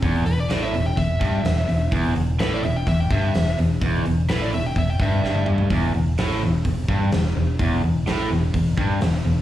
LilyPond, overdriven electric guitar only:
\new Staff \with { instrumentName = "Overdriven electric guitar" } { \clef bass \time 4/4 \key e \minor \tempo 4 = 127 e,8 e,8 a,8 e,8 e,8 g,8 e,8 e,8 | e,8 e,8 a,8 e,8 e,8 g,8 e,8 e,8 | e,8 e,8 a,8 e,8 e,8 g,8 g,4 | e,8 e,8 a,8 e,8 e,8 g,8 e,8 e,8 |
e,8 e,8 a,8 e,8 e,8 g,8 e,8 e,8 | }